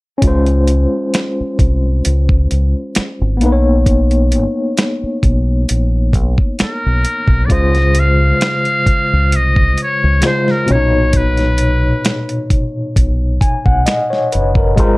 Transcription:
0.18 G#3 C#4
0.22 C#2 F4, kick, closed hi-hat
0.27 C5
0.46 closed hi-hat
0.68 closed hi-hat
1.14 finger snap, snare, closed hi-hat
1.41 muted fingered electric bass stroke
1.59 C2, kick, closed hi-hat
2.05 C#2, closed hi-hat
2.29 kick
2.51 C#2, closed hi-hat
2.95 finger snap, muted fingered electric bass stroke, snare, closed hi-hat
3.21 G#1
3.37 A#3 B3, closed hi-hat
3.43 B1 D#4 B4
3.52 C#5
3.86 kick, closed hi-hat
4.11 closed hi-hat
4.32 closed hi-hat
4.77 finger snap, snare, closed hi-hat
5.03 muted fingered electric bass stroke
5.23 B1, kick, closed hi-hat
5.69 A#1, closed hi-hat
6.13 B1, kick, closed hi-hat
6.38 kick
6.59 A#4, finger snap, muted fingered electric bass stroke, snare, closed hi-hat
6.86 B1
7.05 closed hi-hat
7.28 B1, kick
7.46 C#3 G#3 D5, kick
7.50 C#2 F4 C5 D#5, closed hi-hat
7.75 snare, closed hi-hat
7.95 closed hi-hat
7.99 F5
8.41 finger snap, snare, closed hi-hat
8.65 closed hi-hat
8.86 muted fingered electric bass stroke, kick, closed hi-hat
9.13 C#2
9.32 C2 D#5, closed hi-hat
9.56 kick
9.78 closed hi-hat
9.83 C#5
10.04 C#2
10.21 C#3 G#3 F4, finger snap, snare, closed hi-hat
10.25 C5
10.48 A#4, snare
10.66 A#2 B2 C#4, closed hi-hat
10.70 B1 C#5
10.75 D#4
11.13 B4, kick, closed hi-hat
11.37 snare, closed hi-hat
11.58 closed hi-hat
12.05 finger snap, snare, closed hi-hat
12.29 closed hi-hat
12.50 kick, closed hi-hat
12.96 B1, kick, closed hi-hat
13.41 G#5, kick, closed hi-hat
13.66 B1 F#5, kick
13.86 D#5, finger snap, snare, closed hi-hat
14.10 C#5, snare
14.32 F#1 B4, closed hi-hat
14.55 A#4, kick
14.76 G#1 G#3 F4 A#4, kick, closed hi-hat
14.80 C5

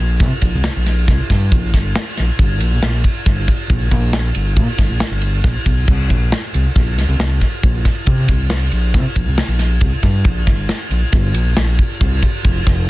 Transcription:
0.00 A#1
0.20 C3, kick, snare, ride
0.41 A#1, kick, ride
0.55 C2
0.64 snare, ride
0.76 A#1
0.86 snare, ride
1.08 C2, kick, snare, ride
1.30 G2, kick, snare, ride
1.52 A#1, kick, ride
1.74 G1, kick, snare, ride
1.95 snare, ride
2.17 A#1, snare, ride
2.39 G1, kick, ride
2.60 A#1, ride
2.73 A#1
2.82 A#1, snare, ride
3.04 kick, ride
3.26 G1, kick, snare, ride
3.48 kick, ride
3.70 A#1, kick, ride
3.91 A#1, kick, ride
4.13 snare, ride
4.35 G1, ride
4.56 A#2, kick, ride
4.78 G1, kick, snare, ride
4.90 A#1
5.00 snare, ride
5.11 G1
5.21 ride
5.44 A#1, kick, snare, ride
5.66 B1, kick, ride
5.88 C2, kick, crash
6.10 A#1, kick, ride
6.32 snare, ride
6.54 C2, ride
6.76 A#1, kick, snare, ride
6.97 C2, snare, ride
7.08 C2
7.19 C2, snare, ride
7.41 kick, snare, ride
7.63 A#1, kick, ride
7.85 kick, snare, ride
8.06 C3, kick, ride
8.28 C2, kick, ride
8.50 snare, ride
8.71 A#1, ride
8.94 C3, kick, snare, ride
9.16 A#1, kick, ride
9.26 C2
9.38 snare, ride
9.48 A#1
9.59 snare, ride
9.81 C2, kick, ride
10.03 G2, kick, snare, ride
10.24 A#1, kick, ride
10.47 G1, kick, snare, ride
10.69 snare, ride
10.91 A#1, ride
11.12 G1, kick, snare, ride
11.34 A#1, ride
11.46 A#1
11.57 A#1, snare, ride
11.79 kick, ride
12.01 C2, kick, ride
12.22 kick, ride
12.45 F1, kick, ride
12.67 F1, kick, snare, ride

